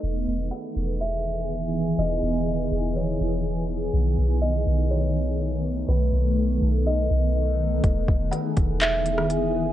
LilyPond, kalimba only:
\new Staff \with { instrumentName = "Kalimba" } { \time 4/4 \key e \major \tempo 4 = 123 r4 fis''4 e''2 | dis''2 cis''2 | r4 dis''4 cis''2 | b'2 dis''2 |
r4 fis''4 e''2 | }